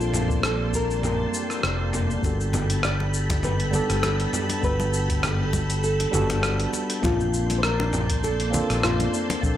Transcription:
0.00 1.25 A#1 medium
0.00 9.57 G3 medium
0.00 2.19 A#3 medium
0.00 2.25 A#3 medium
0.00 2.25 C4 medium
0.00 2.23 D4 medium
0.00 0.40 F4 medium
0.00 2.26 F4 medium
0.00 2.25 A4 medium
0.00 2.20 D5 medium
0.00 1.31 A5 medium
0.00 2.20 A5 medium
0.00 2.20 C6 loud
0.00 9.57 G6 medium
0.00 cabasa soft
0.14 mid tom medium
0.14 cabasa medium
0.30 kick loud
0.30 cabasa soft
0.43 0.75 A4 loud
0.43 cross-stick loud
0.43 cabasa soft
0.73 1.04 A#4 loud
0.73 kick medium
0.73 cabasa medium
0.91 cabasa soft
1.03 1.90 A#4 medium
1.03 mid tom medium
1.03 cabasa soft
1.34 cabasa medium
1.50 cross-stick soft
1.50 cabasa soft
1.63 2.15 F1 medium
1.63 cross-stick medium
1.63 cabasa soft
1.93 mid tom medium
1.93 cabasa medium
2.11 cabasa soft
2.21 3.80 G1 medium
2.21 3.69 G3 medium
2.21 3.70 B3 medium
2.21 3.70 D4 medium
2.21 3.71 F#4 medium
2.21 7.00 A4 medium
2.21 7.00 A5 medium
2.21 7.00 B5 loud
2.21 kick loud
2.21 muted conga soft
2.21 cabasa soft
2.26 3.71 A4 medium
2.41 cabasa soft
2.53 mid tom medium
2.53 muted conga medium
2.53 cabasa medium
2.70 closed hi-hat medium
2.70 cabasa soft
2.83 3.44 D5 loud
2.83 cross-stick medium
2.83 cabasa soft
3.00 muted conga soft
3.14 cabasa medium
3.30 kick loud
3.30 closed hi-hat soft
3.30 muted conga medium
3.30 cabasa soft
3.43 3.75 B4 medium
3.43 mid tom medium
3.43 cabasa soft
3.60 closed hi-hat soft
3.71 4.59 G3 medium
3.71 4.60 B3 medium
3.71 4.60 D4 medium
3.71 4.61 G4 medium
3.71 4.04 A4 medium
3.71 muted conga soft
3.71 low conga medium
3.71 cabasa medium
3.75 4.61 A4 loud
3.90 4.25 G1 medium
3.90 cross-stick soft
3.90 closed hi-hat soft
3.90 cabasa soft
4.03 4.66 G4 medium
4.03 cross-stick medium
4.03 muted conga medium
4.03 cabasa soft
4.20 closed hi-hat soft
4.33 mid tom medium
4.33 cabasa medium
4.49 closed hi-hat medium
4.49 muted conga soft
4.49 cabasa soft
4.61 6.05 G1 medium
4.61 6.09 G3 medium
4.61 6.10 B3 medium
4.61 6.10 D4 medium
4.61 6.11 F#4 medium
4.61 5.50 B4 medium
4.61 kick loud
4.61 cabasa soft
4.66 6.11 A4 medium
4.80 muted conga medium
4.80 cabasa soft
4.94 cabasa medium
5.10 kick loud
5.10 closed hi-hat medium
5.10 cabasa soft
5.23 cross-stick medium
5.23 mid tom medium
5.23 muted conga soft
5.23 cabasa soft
5.53 kick medium
5.53 muted conga medium
5.53 cabasa medium
5.70 closed hi-hat medium
5.70 cabasa soft
5.84 6.40 A4 loud
5.84 cabasa soft
6.00 closed hi-hat soft
6.00 muted conga soft
6.11 6.65 G1 medium
6.11 6.99 G3 medium
6.11 7.00 B3 medium
6.11 7.00 D4 medium
6.11 7.01 F#4 medium
6.11 mid tom medium
6.11 low conga medium
6.11 cabasa medium
6.16 7.01 A4 loud
6.30 cross-stick soft
6.30 closed hi-hat medium
6.30 muted conga medium
6.30 cabasa soft
6.43 cross-stick medium
6.43 cabasa soft
6.60 closed hi-hat soft
6.73 muted conga soft
6.73 cabasa medium
6.90 closed hi-hat medium
6.90 cabasa soft
7.01 8.60 A#1 loud
7.01 8.49 A#3 medium
7.01 9.57 A#3 medium
7.01 8.50 C4 medium
7.01 8.50 D4 medium
7.01 7.59 F4 loud
7.01 8.51 F4 medium
7.01 9.57 D5 medium
7.01 9.57 A5 medium
7.01 9.57 C6 medium
7.01 kick loud
7.01 mid tom medium
7.01 muted conga medium
7.01 cabasa soft
7.05 8.51 A5 medium
7.20 cabasa soft
7.34 cabasa medium
7.50 closed hi-hat medium
7.50 muted conga medium
7.50 cabasa soft
7.58 7.64 C5 medium
7.63 8.23 A#4 loud
7.63 cross-stick medium
7.63 cabasa soft
7.80 muted conga medium
7.93 mid tom medium
7.93 cabasa medium
8.10 kick loud
8.10 closed hi-hat medium
8.10 cabasa soft
8.24 8.84 A4 medium
8.24 muted conga medium
8.24 cabasa soft
8.40 closed hi-hat soft
8.51 9.39 A#3 medium
8.51 9.39 C4 medium
8.51 9.40 D4 medium
8.51 9.41 F4 medium
8.51 muted conga medium
8.51 low conga medium
8.51 cabasa medium
8.55 9.41 A4 loud
8.70 9.05 A#1 medium
8.70 cross-stick soft
8.70 closed hi-hat medium
8.70 cabasa soft
8.83 9.15 F4 loud
8.83 cross-stick medium
8.83 mid tom medium
8.83 cabasa soft
9.00 closed hi-hat soft
9.00 muted conga medium
9.14 9.57 D4 medium
9.14 cabasa medium
9.30 closed hi-hat medium
9.30 muted conga medium
9.30 cabasa soft
9.41 9.57 A#1 medium
9.41 9.57 F3 medium
9.41 9.57 A#3 medium
9.41 9.57 C4 medium
9.41 9.57 D4 medium
9.41 kick loud
9.41 cabasa soft
9.46 9.57 A4 medium

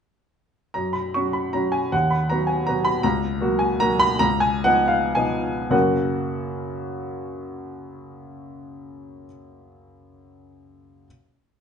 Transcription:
0.74 1.13 F#2 soft
0.74 0.94 A#5 medium
0.93 1.14 B5 medium
1.14 1.50 F#3 soft
1.14 1.51 C#4 soft
1.14 1.51 F#4 soft
1.14 1.34 C#6 medium
1.33 1.53 B5 medium
1.53 1.89 F#3 soft
1.53 1.89 C#4 soft
1.53 1.89 F#4 soft
1.53 1.73 A#5 medium
1.72 1.92 G#5 medium
1.92 2.29 D#2 medium
1.92 2.11 F#5 medium
2.11 2.29 B5 medium
2.29 2.64 F#3 soft
2.29 2.64 B3 soft
2.29 2.64 F#4 soft
2.29 2.48 A#5 medium
2.47 2.66 G#5 medium
2.67 3.01 F#3 soft
2.67 3.01 B3 soft
2.67 3.01 F#4 soft
2.67 2.86 A#5 medium
2.85 3.04 B5 medium
3.03 3.40 C#2 medium
3.03 3.61 A#5 loud
3.41 3.77 F#3 soft
3.41 3.77 A#3 soft
3.41 3.77 F#4 medium
3.59 3.80 G#5 medium
3.80 4.17 F#3 medium
3.80 4.18 A#3 medium
3.80 4.18 F#4 medium
3.80 4.01 A#5 loud
3.99 4.21 B5 loud
4.19 4.63 C#2 medium
4.19 4.41 A#5 loud
4.40 4.64 G#5 medium
4.64 5.12 F3 soft
4.64 5.12 B3 medium
4.64 5.12 D#4 medium
4.64 4.89 F#5 loud
4.88 5.15 F5 medium
5.15 5.68 F3 soft
5.15 5.69 B3 soft
5.15 5.69 D#4 medium
5.15 5.72 G#5 medium
5.70 9.25 F#2 medium
5.70 9.25 C#3 medium
5.70 9.26 A#3 medium
5.70 9.26 C#4 medium
5.70 9.26 F#4 medium
5.70 9.26 A#4 medium
5.70 9.26 F#5 medium

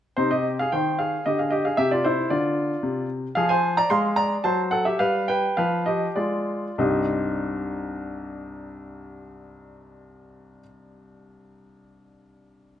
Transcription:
0.17 0.60 C3 soft
0.17 0.30 D#4 soft
0.17 0.30 C5 medium
0.31 0.56 G4 soft
0.31 0.47 D#5 medium
0.59 0.72 G#4 soft
0.59 0.72 F5 medium
0.72 1.15 D#3 soft
0.72 0.97 C5 soft
0.72 0.98 G5 medium
0.99 1.23 G#4 soft
0.99 1.25 F5 medium
1.26 1.68 D3 soft
1.26 1.38 G4 soft
1.26 1.38 D#5 medium
1.39 1.51 G#4 soft
1.39 1.52 F5 soft
1.51 1.64 G4 soft
1.51 1.64 D#5 medium
1.65 1.78 G#4 soft
1.65 1.78 F5 medium
1.77 2.20 C3 soft
1.77 1.90 G4 medium
1.77 1.91 E5 medium
1.91 2.04 F4 soft
1.91 2.04 D5 medium
2.04 2.30 E4 soft
2.04 2.28 C5 medium
2.30 2.73 D3 soft
2.30 3.06 F4 soft
2.30 3.06 D5 medium
2.83 3.26 C3 soft
3.35 3.79 F3 medium
3.35 3.49 G#4 medium
3.35 3.49 F5 medium
3.49 3.75 C5 medium
3.49 3.74 G#5 medium
3.77 3.90 D5 medium
3.77 3.90 A#5 medium
3.90 4.34 G#3 medium
3.90 4.16 F5 medium
3.90 4.06 C6 medium
4.16 4.43 D5 soft
4.16 4.33 A#5 medium
4.44 4.89 F#3 medium
4.44 4.71 C5 medium
4.44 4.61 A5 medium
4.71 4.85 A4 soft
4.71 4.86 F#5 medium
4.85 4.99 G4 soft
4.85 5.00 E5 medium
4.99 5.46 G3 medium
4.99 5.26 B4 medium
4.99 5.28 F5 medium
5.28 5.56 B4 medium
5.28 5.57 G5 medium
5.57 6.06 F3 medium
5.57 5.86 B4 medium
5.57 5.84 F5 medium
5.86 6.15 G4 soft
5.86 6.05 D#5 medium
6.16 6.67 G#3 soft
6.16 6.76 F4 soft
6.16 6.75 D5 medium
6.78 10.60 C2 soft
6.78 10.60 G2 soft
6.78 10.60 G3 soft
6.78 10.60 C4 soft
6.78 10.61 D#4 soft
6.78 10.61 G4 soft
6.78 10.60 D#5 soft

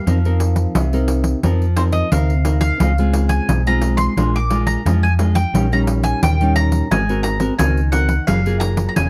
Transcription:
0.00 1.74 F5 medium
0.07 0.65 F2 loud
0.07 0.72 F3 medium
0.07 0.17 C4 medium
0.07 0.17 D#4 medium
0.07 0.18 A#4 medium
0.07 pandeiro medium
0.25 0.88 C4 medium
0.25 0.88 D#4 medium
0.25 0.88 A#4 medium
0.25 pandeiro soft
0.40 pandeiro medium
0.56 pandeiro medium
0.75 1.33 C2 loud
0.75 1.40 C3 medium
0.75 pandeiro medium
0.93 1.39 C4 medium
0.93 1.39 D#4 medium
0.93 1.39 A#4 medium
0.93 pandeiro soft
1.08 pandeiro medium
1.24 pandeiro medium
1.43 2.02 F2 medium
1.43 2.09 F3 medium
1.43 1.64 C4 soft
1.43 1.64 D#4 medium
1.43 1.64 A#4 medium
1.43 pandeiro medium
1.62 pandeiro soft
1.77 2.06 C4 medium
1.77 2.06 D#4 medium
1.77 2.06 A#4 medium
1.77 1.82 C5 medium
1.77 pandeiro medium
1.92 2.10 D#5 medium
1.92 pandeiro medium
2.12 2.70 D2 loud
2.12 2.77 C3 medium
2.12 2.32 C4 soft
2.12 2.32 D#4 medium
2.12 2.33 A#4 medium
2.12 2.60 F5 medium
2.12 pandeiro medium
2.30 pandeiro soft
2.45 2.77 C4 medium
2.45 2.77 D#4 soft
2.45 2.78 A#4 medium
2.45 pandeiro medium
2.61 3.26 F5 loud
2.61 pandeiro medium
2.80 3.38 C#2 loud
2.80 3.46 C#3 soft
2.80 2.91 G#3 medium
2.80 2.91 C4 medium
2.80 2.91 F4 medium
2.80 pandeiro medium
2.98 3.61 G#3 medium
2.98 3.61 C4 medium
2.98 3.61 F4 medium
2.98 pandeiro soft
3.13 pandeiro medium
3.29 3.62 G#5 medium
3.29 pandeiro medium
3.48 4.07 B1 medium
3.48 4.14 G#2 medium
3.48 pandeiro medium
3.67 4.12 G#3 medium
3.67 4.12 C4 medium
3.67 4.13 F4 medium
3.67 3.97 A#5 medium
3.67 pandeiro soft
3.81 pandeiro medium
3.97 4.34 C6 medium
3.97 pandeiro medium
4.17 4.75 A#1 medium
4.17 4.82 A#2 medium
4.17 4.38 G#3 medium
4.17 4.38 D4 medium
4.17 4.38 F4 medium
4.17 pandeiro medium
4.36 4.66 D6 loud
4.36 pandeiro soft
4.50 4.80 G#3 medium
4.50 4.80 D4 medium
4.50 4.80 F4 medium
4.50 pandeiro medium
4.67 5.03 A#5 medium
4.67 pandeiro medium
4.85 5.44 F2 medium
4.85 5.51 F3 medium
4.85 5.06 G#3 soft
4.85 5.06 D4 medium
4.85 5.06 F4 medium
4.85 pandeiro medium
5.03 5.12 G#5 medium
5.03 pandeiro soft
5.19 5.40 G#3 soft
5.19 5.40 D4 medium
5.19 5.40 F4 medium
5.19 pandeiro medium
5.35 5.71 G5 loud
5.35 pandeiro medium
5.54 6.12 A#1 loud
5.54 6.19 A#2 medium
5.54 5.66 G3 medium
5.54 5.66 C#4 medium
5.54 5.66 D#4 medium
5.54 pandeiro medium
5.72 6.35 G3 medium
5.72 6.35 C#4 medium
5.72 6.35 D#4 medium
5.72 5.82 A#5 medium
5.72 pandeiro soft
5.87 pandeiro medium
6.03 6.21 G#5 medium
6.03 pandeiro medium
6.22 6.81 D#2 medium
6.22 6.88 A#2 medium
6.22 6.55 G5 medium
6.22 pandeiro medium
6.41 6.86 G3 medium
6.41 6.86 C#4 medium
6.41 6.86 D#4 medium
6.41 pandeiro soft
6.56 6.91 A#5 medium
6.56 pandeiro medium
6.72 pandeiro medium
6.91 7.49 G#1 medium
6.91 7.56 G#3 medium
6.91 7.01 C4 medium
6.91 7.02 F#4 medium
6.91 7.02 A#4 medium
6.91 7.23 G#5 medium
6.91 pandeiro medium
7.09 7.38 C4 medium
7.09 7.38 F#4 medium
7.09 7.38 A#4 medium
7.09 pandeiro soft
7.23 7.58 A#5 medium
7.23 pandeiro medium
7.40 7.53 C4 medium
7.40 7.53 F#4 medium
7.40 7.53 A#4 medium
7.40 pandeiro medium
7.59 8.18 C#2 loud
7.59 8.24 D#3 medium
7.59 7.80 C4 medium
7.59 7.80 F#4 medium
7.59 7.80 A#4 medium
7.59 7.91 G#5 medium
7.59 pandeiro medium
7.77 pandeiro soft
7.92 8.13 C4 medium
7.92 8.13 F#4 medium
7.92 8.14 A#4 medium
7.92 8.25 F#5 medium
7.92 pandeiro medium
8.09 pandeiro medium
8.27 8.86 F#1 loud
8.27 8.93 F#3 medium
8.27 8.40 A#3 medium
8.27 8.40 F4 medium
8.27 8.40 G#4 medium
8.27 8.60 F5 loud
8.27 pandeiro medium
8.46 9.08 A#3 medium
8.46 9.09 F4 medium
8.46 9.09 G#4 medium
8.46 pandeiro soft
8.60 8.87 A#5 medium
8.60 pandeiro medium
8.77 pandeiro medium
8.89 8.96 A#5 medium
8.96 9.10 E1 medium
8.96 9.10 C#3 medium
8.96 9.10 G#5 medium
8.96 pandeiro medium

